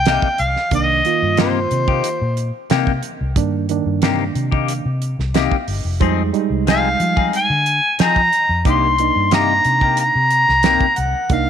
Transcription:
0.00 0.19 C2 medium
0.00 0.43 G5 loud
0.06 0.27 C3 medium
0.06 0.27 A#3 medium
0.06 0.27 D#4 medium
0.06 0.27 G4 medium
0.06 snare loud
0.06 closed hi-hat medium
0.22 kick medium
0.38 0.54 C2 medium
0.38 0.73 F5 medium
0.38 closed hi-hat medium
0.56 snare soft
0.71 1.00 C2 medium
0.71 1.00 D#3 medium
0.71 1.01 A#3 medium
0.71 1.01 D4 medium
0.71 1.36 D#5 medium
0.71 kick medium
0.71 closed hi-hat medium
1.05 2.19 D#3 medium
1.05 2.19 A#3 medium
1.05 2.20 F4 medium
1.05 closed hi-hat medium
1.22 1.65 G2 medium
1.37 1.58 C3 medium
1.37 1.59 A#3 medium
1.37 1.59 D#4 medium
1.37 1.59 G4 medium
1.37 2.67 C5 medium
1.37 snare loud
1.37 closed hi-hat medium
1.71 2.00 C3 medium
1.71 closed hi-hat medium
1.88 2.09 A#3 soft
1.88 2.08 D#4 soft
1.88 2.08 G4 medium
1.88 kick medium
2.04 closed hi-hat medium
2.21 2.50 A#2 medium
2.37 closed hi-hat medium
2.70 2.90 C3 medium
2.70 3.00 C3 medium
2.70 2.91 A#3 medium
2.70 2.91 D#4 medium
2.70 2.91 G4 loud
2.70 snare loud
2.70 closed hi-hat medium
2.87 kick medium
3.03 closed hi-hat medium
3.21 3.35 C2 medium
3.36 3.80 G2 loud
3.36 3.65 D#3 medium
3.36 3.65 A#3 medium
3.36 3.66 D4 medium
3.36 kick medium
3.36 closed hi-hat medium
3.69 4.84 D#3 medium
3.69 4.84 A#3 medium
3.69 4.84 D4 medium
3.69 closed hi-hat medium
3.86 4.29 G2 medium
4.02 4.23 C3 medium
4.02 4.23 A#3 medium
4.02 4.23 D#4 medium
4.02 4.23 G4 medium
4.02 snare loud
4.02 closed hi-hat medium
4.35 4.79 C3 medium
4.35 closed hi-hat medium
4.51 4.73 A#3 soft
4.51 4.72 D#4 medium
4.51 4.72 G4 medium
4.51 kick medium
4.68 closed hi-hat medium
4.85 5.15 C3 medium
5.02 closed hi-hat medium
5.19 5.48 C2 medium
5.19 snare soft
5.34 5.55 C3 medium
5.34 5.55 A#3 medium
5.34 5.56 D#4 medium
5.34 5.56 G4 medium
5.34 snare loud
5.34 closed hi-hat medium
5.51 kick medium
5.68 5.83 G1 medium
5.68 open hi-hat medium
5.85 5.99 F1 medium
6.00 6.30 F2 medium
6.00 6.21 F3 medium
6.00 6.29 G3 medium
6.00 6.29 G#3 medium
6.00 6.21 C4 medium
6.00 6.30 D#4 medium
6.00 6.22 D#4 medium
6.00 6.22 G#4 medium
6.00 kick loud
6.00 closed hi-hat medium
6.33 7.48 G3 medium
6.33 7.48 G#3 medium
6.33 7.48 D#4 medium
6.33 closed hi-hat medium
6.50 6.94 C2 medium
6.67 6.87 F3 medium
6.67 6.88 C4 medium
6.67 6.88 D#4 medium
6.67 6.88 G#4 medium
6.67 7.31 F5 medium
6.67 snare loud
6.67 closed hi-hat medium
7.00 7.29 F3 medium
7.00 closed hi-hat medium
7.16 7.38 C4 soft
7.16 7.37 D#4 soft
7.16 7.36 G#4 medium
7.16 kick medium
7.33 7.97 G#5 medium
7.33 closed hi-hat medium
7.50 7.79 D3 medium
7.66 closed hi-hat medium
7.99 8.20 F3 medium
7.99 8.29 F3 medium
7.99 8.20 C4 medium
7.99 8.20 D#4 medium
7.99 8.21 G#4 medium
7.99 snare loud
7.99 closed hi-hat medium
8.03 8.64 A#5 loud
8.16 kick medium
8.33 closed hi-hat medium
8.49 8.64 F2 medium
8.65 9.10 C2 loud
8.65 8.86 C3 medium
8.65 8.94 A#3 medium
8.65 8.86 A#3 medium
8.65 8.95 D4 medium
8.65 8.86 D#4 medium
8.65 8.95 D#4 medium
8.65 8.87 G4 medium
8.65 kick loud
8.65 closed hi-hat medium
8.70 9.30 C6 medium
8.98 10.13 A#3 medium
8.98 10.13 D4 medium
8.98 10.14 D#4 medium
8.98 closed hi-hat medium
9.16 9.59 G2 medium
9.31 9.52 C3 medium
9.31 9.52 A#3 medium
9.31 9.53 D#4 medium
9.31 9.53 G4 medium
9.31 9.95 A#5 loud
9.31 snare loud
9.31 closed hi-hat medium
9.65 10.09 C3 medium
9.65 closed hi-hat medium
9.81 10.03 A#3 soft
9.81 10.02 D#4 soft
9.81 10.02 G4 soft
9.81 kick medium
9.97 11.00 A#5 loud
9.97 closed hi-hat medium
10.15 10.44 C3 medium
10.30 closed hi-hat medium
10.49 10.78 C2 medium
10.49 snare soft
10.63 10.85 C3 medium
10.63 10.85 A#3 medium
10.63 10.85 D#4 medium
10.63 10.85 G4 medium
10.63 snare loud
10.63 closed hi-hat medium
10.81 kick medium
10.96 11.13 C2 medium
10.96 11.35 F#5 medium
10.96 closed hi-hat medium
11.30 11.50 C2 medium
11.30 11.50 A#3 medium
11.30 11.50 D4 medium
11.30 11.50 D#4 medium
11.30 11.50 F5 medium
11.30 kick medium
11.30 closed hi-hat medium

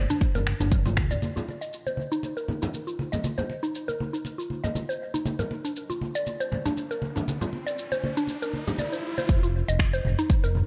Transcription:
0.10 0.21 D4 loud
0.10 closed hi-hat medium
0.10 high conga medium
0.10 shaker medium
0.21 kick loud
0.21 closed hi-hat soft
0.21 muted conga medium
0.21 shaker medium
0.35 0.54 G1 medium
0.35 0.42 A#4 loud
0.35 low conga medium
0.35 shaker soft
0.47 finger snap medium
0.47 high conga medium
0.60 0.98 G1 medium
0.60 0.67 D4 medium
0.60 closed hi-hat medium
0.60 low conga medium
0.60 shaker medium
0.72 kick loud
0.72 closed hi-hat soft
0.72 high tom medium
0.72 muted conga soft
0.72 shaker medium
0.85 0.96 F4 medium
0.85 high tom medium
0.85 high conga loud
0.85 low conga medium
0.85 shaker soft
0.97 1.17 D2 medium
0.97 finger snap medium
0.97 kick medium
0.97 mid tom medium
0.97 high conga medium
1.11 1.21 D5 loud
1.11 closed hi-hat medium
1.11 mid tom medium
1.11 muted conga medium
1.11 shaker medium
1.22 high conga loud
1.22 shaker medium
1.36 1.46 F4 medium
1.36 low conga loud
1.36 shaker soft
1.49 muted conga medium
1.61 1.72 D#5 medium
1.61 shaker medium
1.73 shaker medium
1.86 1.97 C5 loud
1.86 muted conga soft
1.86 shaker soft
1.97 high conga medium
2.12 2.23 D#4 loud
2.12 shaker medium
2.23 muted conga soft
2.23 shaker medium
2.37 2.43 A#4 medium
2.37 shaker soft
2.48 high conga medium
2.48 low conga medium
2.62 2.68 D#4 medium
2.62 low conga loud
2.62 shaker medium
2.74 muted conga soft
2.74 shaker medium
2.87 2.98 F4 medium
2.87 shaker soft
2.99 high conga medium
3.12 3.23 D#5 medium
3.12 muted conga medium
3.12 low conga medium
3.12 shaker medium
3.24 high conga loud
3.24 shaker medium
3.38 3.49 C5 loud
3.38 low conga medium
3.38 shaker soft
3.50 muted conga soft
3.63 3.74 D#4 medium
3.63 shaker medium
3.75 shaker medium
3.88 3.94 A#4 loud
3.88 muted conga soft
3.88 shaker soft
4.00 high conga medium
4.13 4.20 D#4 medium
4.13 shaker medium
4.25 muted conga soft
4.25 shaker medium
4.38 4.49 F4 medium
4.38 shaker soft
4.50 high conga medium
4.64 4.74 D#5 medium
4.64 low conga loud
4.64 shaker medium
4.75 muted conga soft
4.75 high conga loud
4.75 shaker medium
4.89 5.00 C5 medium
4.89 shaker soft
5.14 5.25 D#4 loud
5.14 muted conga soft
5.14 shaker medium
5.25 riser medium
5.25 high conga loud
5.25 shaker medium
5.39 5.46 A#4 loud
5.39 low conga loud
5.39 shaker soft
5.51 muted conga soft
5.65 5.71 D4 medium
5.65 shaker medium
5.76 shaker medium
5.90 6.00 F4 medium
5.90 muted conga soft
5.90 shaker soft
6.01 high conga medium
6.15 6.26 D5 loud
6.15 shaker medium
6.27 muted conga medium
6.27 shaker medium
6.40 6.51 C5 loud
6.40 shaker soft
6.52 high conga medium
6.52 low conga medium
6.66 6.76 D4 loud
6.66 low conga loud
6.66 shaker medium
6.77 muted conga soft
6.77 shaker medium
6.91 6.97 A#4 loud
6.91 shaker soft
7.02 high conga medium
7.16 7.22 D4 medium
7.16 muted conga soft
7.16 low conga loud
7.16 shaker medium
7.28 high conga loud
7.28 shaker medium
7.41 7.52 F4 medium
7.41 low conga loud
7.41 shaker soft
7.53 muted conga soft
7.67 7.77 D5 medium
7.67 shaker medium
7.78 shaker medium
7.92 8.03 C5 loud
7.92 muted conga soft
7.92 shaker soft
8.04 high conga medium
8.17 8.28 D4 loud
8.17 shaker medium
8.27 muted conga soft
8.27 shaker medium
8.42 8.48 A#4 loud
8.42 shaker soft
8.53 high conga medium
8.67 8.74 G4 medium
8.67 low conga loud
8.67 shaker medium
8.78 8.91 D5 medium
8.78 muted conga soft
8.78 high conga medium
8.78 shaker medium
8.93 9.03 C5 medium
8.93 shaker soft
9.18 9.28 C5 loud
9.18 muted conga soft
9.18 shaker medium
9.29 9.63 F1 loud
9.29 kick loud
9.29 closed hi-hat soft
9.29 shaker medium
9.43 9.53 F4 medium
9.43 shaker soft
9.68 10.00 F1 medium
9.68 9.79 D#5 loud
9.68 closed hi-hat medium
9.68 shaker medium
9.79 finger snap loud
9.79 kick loud
9.79 closed hi-hat soft
9.79 shaker medium
9.93 10.04 C5 loud
9.93 shaker soft
10.05 10.15 F1 loud
10.05 mid tom medium
10.19 10.30 D#4 loud
10.19 closed hi-hat medium
10.19 shaker medium
10.30 kick loud
10.30 closed hi-hat soft
10.30 shaker medium
10.44 10.62 F1 medium
10.44 10.50 A#4 loud
10.44 shaker soft
10.55 mid tom medium

